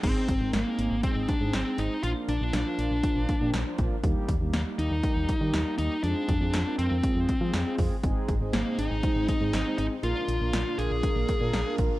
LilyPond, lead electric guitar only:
\new Staff \with { instrumentName = "Lead electric guitar" } { \time 4/4 \key bes \mixolydian \tempo 4 = 120 c'4 bes4 c'8 d'8 c'8 ees'8 | f'8 d'8 d'2 r4 | r4 bes8 ees'2 ees'8 | d'4. c'2 r8 |
r4 bes8 ees'4 ees'4 ees'8 | f'4. aes'2 r8 | }